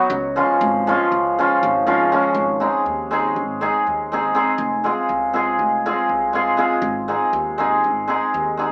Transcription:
Already playing: F#3
0.10 C#2
0.36 F3 G#3 C#4 F4
0.61 G#1
0.87 F3 G#3 C#4 F4
1.12 C#2
1.38 F3 G#3 C#4 F4
1.63 G#1
1.86 F3 G#3 C#4 F4
2.12 F3 G#3 C#4 F4
2.34 G#1
2.60 G#3 C4 D#4 G#4
2.86 D#2
3.11 G#3 C4 D#4 G#4
3.36 G#1
3.61 G#3 C4 D#4 G#4
3.87 D#2
4.12 G#3 C4 D#4 G#4
4.34 G#3 C4 D#4 G#4
4.58 F1
4.84 G#3 C4 F4 G#4
5.09 C2
5.33 G#3 C4 F4 G#4
5.59 F1
5.86 G#3 C4 F4 G#4
6.09 C2
6.33 G#3 C4 F4 G#4
6.57 G#3 C4 F4 G#4
6.82 G#1
7.08 G#3 C4 D#4 G#4
7.33 D#2
7.58 G#3 C4 D#4 G#4
7.84 G#1
8.08 G#3 C4 D#4 G#4
8.34 D#2
8.57 G#3 C4 D#4 G#4

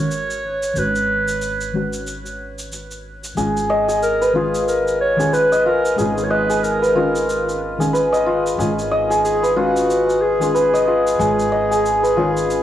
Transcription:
Already playing: G#1 D#3 G#3 C#4 C#5
0.00 F#4
0.11 shaker
0.31 shaker
0.63 shaker
0.74 G#1 D#3 G#3 C#4, shaker
0.78 F#4 B4
0.96 shaker
1.28 shaker
1.42 shaker
1.61 shaker
1.73 D#3 G#3 C#4 F#4
1.93 shaker
2.07 shaker
2.26 shaker
2.59 shaker
2.72 shaker
2.91 shaker
3.24 shaker
3.35 G#1 D#3 G#3 C#4 F4 G#4, shaker
3.57 shaker
3.70 D#5
3.88 G#4, shaker
4.03 A#4, shaker
4.21 B4, shaker
4.33 D#3 G#3 C#4 F4 G#4
4.55 shaker
4.68 A#4, shaker
4.88 shaker
5.01 C#5
5.16 D#3 G#3 C#4 F4 G#4, shaker
5.33 B4, shaker
5.52 D#5, shaker
5.66 F4 A#4
5.86 shaker
5.95 G#1 D#3 G#3 C#4 F4 G#4, shaker
6.18 shaker
6.24 C#5
6.30 B4 D#5
6.50 G#4, shaker
6.64 A#4, shaker
6.82 B4, shaker
6.95 D#3 G#3 C#4 F4
7.16 shaker
7.30 shaker
7.49 shaker
7.78 D#3 G#3 C#4 G#4, shaker
7.82 F4
7.93 B4, shaker
8.12 D#5, shaker
8.26 F4
8.47 shaker
8.57 G#1 D#3 G#3 C#4 F4 G#4, shaker
8.79 shaker
8.91 D#5
9.10 G#4, shaker
9.24 G#4, shaker
9.43 B4, shaker
9.56 D#3 G#3 C#4 F4 F#4
9.77 shaker
9.90 shaker
10.10 shaker
10.22 G#4
10.39 D#3 G#3 C#4 F4 G#4, shaker
10.55 B4, shaker
10.74 D#5, shaker
10.87 F4 G#4
11.07 shaker
11.18 G#1 D#3 G#3 C#4 F4 G#4, shaker
11.40 shaker
11.52 D#5
11.71 G#4, shaker
11.86 shaker
12.03 B4, shaker
12.16 D#3 G#3 C#4 F4
12.37 shaker
12.51 shaker

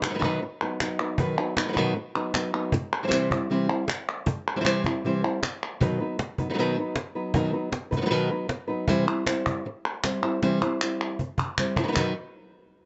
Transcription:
0.02 B3 D#4 B4, cajon slap, clap
0.06 D#3 F#3 B3
0.11 D#3 F#3 D#4 B4
0.15 B3 D#4 B4
0.19 B2 D#3 F#3 B3 D#4 B4, cajon bass
0.24 D#3 F#3 B3 D#4 B4
0.42 muted nylon-string guitar stroke
0.62 F#3 B3 D#4 B4
0.80 F#3 B3 D#4 B4, cajon slap, clap
1.00 F#3 B3 D#4 B4
1.18 B2 D#3 F#3 B3 D#4 B4, cajon bass
1.38 F#3 B3 D#4 B4
1.57 F#3 B3 D#4 B4, cajon slap, clap
1.68 D#3 F#3 B3 D#4 B4
1.73 D#3 F#3 B3 D#4 B4, cajon bass
1.77 B2 D#3 F#3 B3 D#4 B4
1.96 muted nylon-string guitar stroke
2.15 F#3 B3 D#4 B4
2.34 F#3 B3 D#4 B4, cajon slap, clap
2.54 F#3 B3 D#4 B4
2.72 muted nylon-string guitar stroke, cajon bass
3.03 E3 G3 C4 E4 C5
3.08 E3 G3 C4 E4 C5, cajon slap
3.12 C3 E3 G3 C4 E4 C5, clap
3.31 G3 C4 E4, cajon bass
3.50 C3 E3 G3 C4 E4 C5
3.69 G3 C4 E4 C5, cajon slap
3.87 muted nylon-string guitar stroke, cajon slap, clap
4.09 clap
4.26 muted nylon-string guitar stroke, cajon bass
4.56 E3 G3 C4 E4 C5
4.60 E3 G3 C4 E4 C5
4.65 C3 E3 G3 C4 E4 C5, cajon slap, clap
4.84 G3 C4 E4, cajon bass
5.05 C3 E3 G3 C4 E4 C5
5.24 G3 C4 E4 C5
5.42 muted nylon-string guitar stroke, cajon slap, clap
5.80 B2 D#3 F#3 B3 D#4 B4, cajon bass
6.00 F#3 B3 D#4 B4
6.19 muted nylon-string guitar stroke, cajon slap
6.38 F#3 B3 D#4 B4, cajon bass
6.50 D#3 F#3 B3 D#4 B4
6.54 F#3 B3 D#4 B4
6.58 B2 D#3 F#3 B3 D#4 B4
6.78 F#3 B3 D#4 B4
6.96 muted nylon-string guitar stroke, cajon slap
7.15 F#3 B3 D#4 B4
7.34 B2 D#3 F#3 B3 D#4 B4, cajon bass
7.53 F#3 B3 D#4 B4
7.72 muted nylon-string guitar stroke, cajon slap
7.91 F#3 B3 D#4 B4, cajon bass
7.97 D#3 F#3 B3 D#4 B4
8.01 D#3 F#3 B3 D#4 B4
8.06 D#3 F#3 B3 D#4 B4
8.11 B2 D#3 F#3 B3 D#4 B4
8.31 F#3 B3 D#4 B4
8.48 muted nylon-string guitar stroke, cajon slap
8.68 F#3 B3 D#4 B4
8.88 C3 E3 G3 C4 E4 C5, cajon bass
9.07 G3 C4 E4 C5, cajon slap
9.26 G3 C4 E4 C5, cajon slap, clap
9.46 cajon bass
9.65 muted nylon-string guitar stroke
10.04 G3 C4 E4 C5, cajon slap, clap
10.22 G3 C4 E4 C5
10.42 C3 E3 G3 C4 E4 C5, cajon slap
10.62 G3 C4 E4 C5, cajon slap
10.81 G3 C4 E4 C5, clap
11.01 clap
11.19 muted nylon-string guitar stroke, cajon bass
11.38 cajon bass
11.58 G3 C4 E4 C5, cajon bass, clap
11.76 G3 C4 E4 C5, cajon bass
11.83 D#3 F#3 B3 D#4 B4
11.88 D#3 F#3 B3 D#4 B4
11.92 D#3 F#3 B3 D#4 B4, clap
11.96 B2 D#3 F#3 B3 D#4 B4, cajon bass

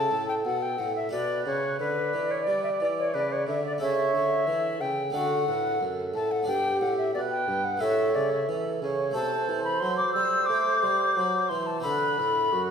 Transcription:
Already playing: C#3 A3 E4 A4 A5
0.11 A2
0.29 G5
0.45 B2 F#5
0.62 G5
0.78 A2 F#5
0.96 E5
1.09 B2 G4 B4 D5
1.46 C#3 C#5
1.79 D3 B4 D5
2.13 E3
2.31 C#5
2.47 G3 D5
2.64 E5
2.80 E3 D5
2.98 C#5
3.14 C#3 B4
3.32 C#5
3.47 D3 E5
3.67 D5
3.78 C#3 E4 A4 C#5 E5
4.14 D3
4.47 E3 A4
4.81 C#3 G5
5.10 D3 A3 D4 F#4 D5 F#5
5.15 D3
5.47 A2 B4
5.81 F#2 A4
6.14 A2 A5
6.31 F#5
6.43 B3 D4 D5
6.47 G2 G4 G5
6.81 A2 F#5
6.98 E5
7.14 B2 B4 D5
7.31 G5
7.48 G2
7.65 F#5
7.77 A3 C#4 A4 E5
7.82 A2 C#5
8.15 C#3 D5
8.33 E5
8.48 E3 A4
8.82 C#3 C#5
9.11 C3 A3 E4 A4 C5 A5
9.16 C3
9.48 E3
9.64 B5
9.80 F#3 C6
9.97 D6
10.13 G3 E6
10.46 A3 D6
10.83 G3
11.17 F#3
11.49 E3 C6
11.66 A5
11.80 C4 F#4 A4 B5
11.85 D3 B4
12.18 A2 A4
12.52 F#2 F#4

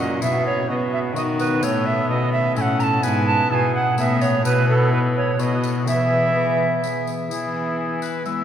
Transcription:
Already playing: F#2 G#2 A#2 C#4 E4 F#4
0.00 D#5
0.21 B2 B3 E4 F#4 G#4 E5, tambourine
0.46 C#5
0.68 B2 B3 F#4 D#5
0.93 E5
1.13 D#3 B3 F#4 D#5, tambourine
1.19 F#4
1.39 B4, tambourine
1.62 A2 A4 C#5, tambourine
1.86 E5
2.08 B2 C#4 E4 A4 D#5
2.32 E5
2.56 A2 C#4 E4 A4 G#5, tambourine
2.61 F#5
2.79 A5 A#5, tambourine
3.03 G#2 G#3 B3 B4 G#5, tambourine
3.27 A5
3.50 B2 B3 E4 G#4 B4 A5
3.54 G#5
3.75 F#5
3.97 A2 B3 E4 G#4 B4 E5, tambourine
4.21 C#5, tambourine
4.44 B2 B3 E4 B4, tambourine
4.69 A4
4.92 B3 E4 B4
5.17 C#5
5.39 B2 B3 F#4 B4 D#5, tambourine
5.64 tambourine
5.87 E3 B3 G#4 E5, tambourine
6.35 B3 G#4 B4
6.84 B3 G#4 B4, tambourine
7.07 tambourine
7.28 E3 B3 E4 G#4, tambourine
8.02 B4, tambourine
8.25 G#3 B3 E4 E5, tambourine

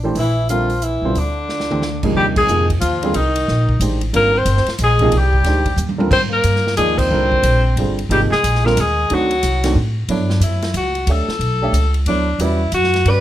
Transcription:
Already playing: A#1
0.03 E3 A3 D4 G4 C5
0.15 A#1 E3, open hi-hat
0.19 E4
0.49 D3 F3 G3 C4 F4 A#4, closed hi-hat
0.70 open hi-hat
0.82 E3 E4, closed hi-hat
1.02 B1 D3 G3 C4 F4 C5
1.15 D2 D3 D4, open hi-hat
1.49 snare
1.60 snare
1.70 E3 A3 D4 G4 C5, mid tom
1.82 snare
2.03 G2 C3 F3 A#3 D#4 G#4, kick, crash
2.14 D#2 G3 G4
2.35 G#3 G#4, kick, crash
2.48 F2 C3 F3 A#3 D#4 G#4, hi-hat pedal
2.70 kick, ride
2.80 D#2 F3 F4, hi-hat pedal, ride
3.03 D3 G3 C4 F4 G#4, ride
3.11 C2 D#3, ride
3.15 D#4
3.36 ride
3.48 A#1, snare
3.69 kick
3.80 A1 D#3 G#3 D4 G4 C5, hi-hat pedal, ride
4.01 ride
4.13 G#1 D3 G3 A#3 C4 F4 A#4, ride
4.36 C4 C5
4.45 G1, hi-hat pedal, ride
4.57 snare
4.66 muted upright bass stroke, snare, ride
4.78 A#1 G#3, hi-hat pedal, ride
4.84 G#4
4.99 C3 F3 A#3 D#4 G#4, kick, ride
5.12 C2 G3, ride
5.18 G4
5.33 kick
5.43 D2 D#3 G#3 D4 G4 C5, snare, ride
5.66 kick, ride
5.76 D#2, hi-hat pedal, high tom
5.89 high tom
5.98 D3 G3 C4 F4 A#4, high tom
6.10 G#2 C4 C5, kick, crash
6.30 A#3 A#4
6.44 G2, hi-hat pedal, ride
6.56 snare
6.67 snare
6.77 D#2 F3 G#3 A#3 D#4 G#4 D5, hi-hat pedal, ride
6.97 C4 C5, kick, crash
7.10 C2 D3 G3 C4 F4 A#4
7.32 kick
7.43 A#1, hi-hat pedal, ride
7.76 G1 D3 G3 C4 F4 G#4, ride
7.99 ride
8.09 G#1 C3 F3 G3 A#3 D#4 G4 G#4, ride
8.30 G#3 G#4, muted upright bass stroke, snare
8.43 A#1, hi-hat pedal, ride
8.55 snare
8.65 D3 G3 A#3 C4 F4 A#4, snare
8.77 D#2 G#3 G#4, hi-hat pedal, ride
9.10 D2 D#3 F#3 A3 C4 D4 F#4, ride
9.14 F#4
9.31 ride
9.43 C2, hi-hat pedal, ride
9.64 D#3 A3 C4 D4 F#4, snare, ride
9.75 A2
10.08 G2 F#3 B3 D4 E4 A4 C#5, ride
10.30 snare
10.40 F#2 E4, hi-hat pedal, ride
10.62 snare, ride
10.74 C#2 F#4, hi-hat pedal, ride
10.95 ride
11.07 D2 A3 D4 G4 C#5 E5, ride
11.11 A4
11.28 muted upright bass stroke, snare
11.39 B1, ride
11.62 A3 D4 G4 C#5 E5
11.72 C#2, hi-hat pedal, ride
11.94 ride
12.06 D2 F#3 B3 D4 E4 A4 C#5, ride
12.39 E2 G3 C#4 E4 F#4 B4 D5, hi-hat pedal, ride
12.72 F#2 F#4, hi-hat pedal, ride
12.84 snare
12.94 snare, ride
13.05 G2 G3 C#4 F#4 B4 D5, ride

